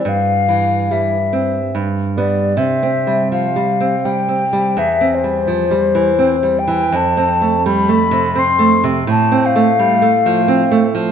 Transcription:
<<
  \new Staff \with { instrumentName = "Flute" } { \time 3/4 \key c \major \tempo 4 = 83 f''4 e''4 r8 d''8 | e''4 f''4 g''4 | e''8 c''2 g''8 | a''4 b''4 c'''8 r8 |
a''8 f''2 r8 | }
  \new Staff \with { instrumentName = "Nylon-string guitar" } { \clef bass \time 3/4 \key c \major g,8 e8 g8 c'8 g,8 <g b>8 | \tuplet 3/2 { c8 c'8 g8 f8 g8 c'8 g8 c'8 g8 } | \tuplet 3/2 { e,8 c'8 g8 f8 g8 e8 c'8 g8 e8 } | \tuplet 3/2 { f,8 c'8 a8 g8 a8 c8 c'8 a8 c8 } |
\tuplet 3/2 { a,8 c'8 a8 g8 a8 f8 c'8 a8 f8 } | }
>>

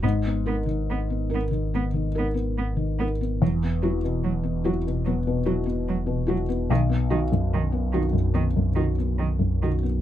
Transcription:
<<
  \new Staff \with { instrumentName = "Felt piano" } { \time 4/4 \key gis \minor \tempo 4 = 72 gis,16 b16 <dis' ais'>16 dis8 b16 <dis' ais'>16 dis16 b16 dis16 <dis' ais'>16 b8 dis16 <dis' ais'>16 b16 | e,16 b16 <e' fis'>16 b,8 b16 <e' fis'>16 b,16 b16 b,16 <e' fis'>16 b8 b,16 <e' fis'>16 b16 | b,,16 b16 <dis' fis'>16 fis,8 b16 <dis' fis'>16 fis,16 b16 fis,16 <dis' fis'>16 b8 fis,16 <dis' fis'>16 b16 | }
  \new Staff \with { instrumentName = "Cello" } { \clef bass \time 4/4 \key gis \minor b8 b8 b8 b8 b8 b8 b8 b8 | fis8 fis8 fis8 fis8 fis8 fis8 fis8 fis8 | dis8 dis8 dis8 dis8 dis8 dis8 dis8 dis8 | }
  \new Staff \with { instrumentName = "Sub bass" } { \clef bass \time 4/4 \key gis \minor gis,,1 | e,,1 | b,,1 | }
>>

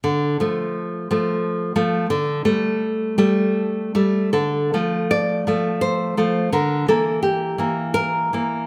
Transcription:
\new Staff \with { instrumentName = "Nylon-string guitar" } { \time 3/4 \key d \minor \tempo 4 = 84 << { r2. | r2. | a'4 d''4 c''4 | bes'8 a'8 g'4 bes'4 | } \\ { d8 <f a>4 <f a>4 <f a>8 | d8 <g a>4 <g a>4 <g a>8 | d8 <f a>4 <f a>4 <f a>8 | d8 <e bes>4 <e bes>4 <e bes>8 | } >> }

